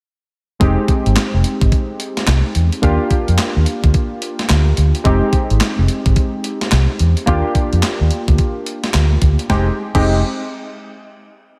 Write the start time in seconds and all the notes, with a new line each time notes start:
0.60 F1 G#3 C4 D#4 G4, kick, closed hi-hat
0.88 kick, closed hi-hat
1.06 G#1, closed hi-hat
1.16 snare, clap, closed hi-hat
1.34 F1
1.44 closed hi-hat
1.61 G#1, kick, closed hi-hat
1.72 kick, closed hi-hat
2.00 closed hi-hat
2.17 snare, closed hi-hat
2.27 C2, snare, clap, closed hi-hat
2.55 E2, closed hi-hat
2.72 closed hi-hat
2.82 D#2 A#3 D4 F4 G4, kick, closed hi-hat
3.11 kick, closed hi-hat
3.28 F2, closed hi-hat
3.38 snare, clap, closed hi-hat
3.56 D#2
3.66 closed hi-hat
3.84 D2, kick, closed hi-hat
3.94 kick, closed hi-hat
4.22 closed hi-hat
4.39 snare, closed hi-hat
4.49 D2, snare, clap, closed hi-hat
4.77 D2, closed hi-hat
4.95 closed hi-hat
5.04 F1 G#3 C4 D#4 G4, kick, closed hi-hat
5.33 kick, closed hi-hat
5.50 G#1, closed hi-hat
5.61 snare, clap, closed hi-hat
5.78 F1
5.88 closed hi-hat
6.06 G#1, kick, closed hi-hat
6.16 kick, closed hi-hat
6.44 closed hi-hat
6.61 snare, closed hi-hat
6.71 C2, snare, clap, closed hi-hat
6.99 E2, closed hi-hat
7.17 closed hi-hat
7.26 D#2 A#3 D4 F4 G4, kick, closed hi-hat
7.55 kick, closed hi-hat
7.73 F2, closed hi-hat
7.83 snare, clap, closed hi-hat
8.01 D#2
8.11 closed hi-hat
8.28 D2, kick, closed hi-hat
8.38 kick, closed hi-hat
8.66 closed hi-hat
8.84 snare, closed hi-hat
8.94 D2, snare, clap, closed hi-hat
9.22 D2, kick, closed hi-hat
9.39 closed hi-hat
9.50 F1 G#3 C4 D#4 G4, kick, snare
9.95 F1 G#3 C4 D#4 G4, kick, crash